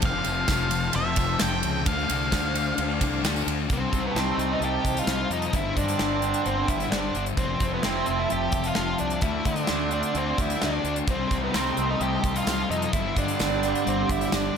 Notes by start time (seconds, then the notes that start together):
0.01 F1 F2 C3 F3 A3 C4 C5 F5 A5, kick, ride, tambourine
0.06 E4
0.24 F1 C3 F3, ride, tambourine
0.47 F1 F2 C3 F3 A3 C4, kick, snare, ride, tambourine
0.52 E4
0.70 C3 F3, ride, tambourine
0.84 tambourine
0.93 F1 E5, ride
1.16 C3 F3 C4 E4, kick, ride, tambourine
1.21 F3
1.39 F1 F2 C3 F3 A3 C4 E4 G5, snare, ride, tambourine
1.63 C#2 A3, ride
1.76 tambourine
1.85 D2 D3 A3 C4 D4 C5 F5, kick, ride, tambourine
1.99 tambourine
2.07 C2 A3 D4, ride, tambourine
2.31 D2 D3 A3 C4 D4, kick, snare, ride, tambourine
2.36 F4
2.45 tambourine
2.54 A3 D4, ride, tambourine
2.67 tambourine
2.78 D2, ride
2.90 tambourine
3.00 C2 D3 A3 C4 D4 F4, kick, ride, tambourine
3.13 tambourine
3.23 D2 D3 A3 C4 D4 F4, snare, ride, tambourine
3.36 tambourine
3.47 D2, ride, tambourine
3.59 tambourine
3.68 C2 C3 G3 A3 C4 D#4 C5 A5, kick, closed hi-hat
3.73 C4 D#4
3.93 C2, kick, closed hi-hat
4.07 B3
4.14 C2 C3 G3 C4, snare, closed hi-hat
4.19 C4
4.37 C2, snare, closed hi-hat
4.53 D#4
4.60 C2 C3 G3 C4 G4, closed hi-hat
4.85 C2, kick, closed hi-hat
4.97 F4, closed hi-hat
5.07 C2, snare, closed hi-hat
5.30 F2 G3 C4 D#4, closed hi-hat
5.42 closed hi-hat
5.53 G1 G2 D3 G3 C4 D4 E4 G5, kick, closed hi-hat
5.77 G2 D4, kick, closed hi-hat
5.88 closed hi-hat
5.98 G1 G2 D3 G3, snare, closed hi-hat
6.22 closed hi-hat
6.34 closed hi-hat
6.45 G1 G2 D3 G3 C4, closed hi-hat
6.68 G1 E4, kick, closed hi-hat
6.80 closed hi-hat
6.91 G1 D4, snare, closed hi-hat
7.13 G1 D3 G3, closed hi-hat
7.26 closed hi-hat
7.35 F1 F2 C3 F3 A3 C4 E5 A5, kick, closed hi-hat
7.40 C4 E4
7.60 F1, kick, closed hi-hat
7.74 B3
7.83 F1 F2 C3 F3 C4, snare, closed hi-hat
8.06 F1, closed hi-hat
8.19 E4
8.29 F1 F2 C3 F3 G4, closed hi-hat
8.52 F1, kick, closed hi-hat
8.64 F4, closed hi-hat
8.75 F1, snare, closed hi-hat
8.98 C2 C3 F3 D4, closed hi-hat
9.10 closed hi-hat
9.21 D2 D3 A3 C4 D4 E4 D5 C6, kick, closed hi-hat
9.45 D3 D4, kick, closed hi-hat
9.56 closed hi-hat
9.67 D2 D3 A3, snare, closed hi-hat
9.72 D4
9.91 D4, closed hi-hat
10.03 closed hi-hat
10.14 D2 D3 A3 C4 D4, closed hi-hat
10.38 D2 E4, kick, closed hi-hat
10.50 closed hi-hat
10.62 D2 D4, snare, closed hi-hat
10.84 D2 A3 D4, closed hi-hat
10.96 closed hi-hat
11.07 C2 C3 G3 A3 C4 D#4 A4 D#5, kick, closed hi-hat
11.31 C2, kick, closed hi-hat
11.44 B3
11.53 C2 C3 G3 C4, snare, closed hi-hat, tambourine
11.77 C2, closed hi-hat
11.90 D#4
11.99 C2 C3 G3 C4 G4, closed hi-hat
12.24 C2, kick, closed hi-hat
12.36 F4, closed hi-hat
12.46 C2, snare, closed hi-hat, tambourine
12.69 F2 G3 C4 D#4, closed hi-hat
12.82 closed hi-hat
12.92 G1 G2 D3 G3 C4 D4 E4 G4 D5, kick, closed hi-hat
13.16 G2 D4, kick, closed hi-hat
13.28 closed hi-hat
13.39 G1 G2 D3 G3, snare, closed hi-hat, tambourine
13.63 snare, closed hi-hat
13.75 closed hi-hat
13.85 G1 G2 D3 G3 C4, closed hi-hat
14.09 G1 E4, kick, closed hi-hat
14.21 closed hi-hat
14.32 G1 D4, snare, closed hi-hat, tambourine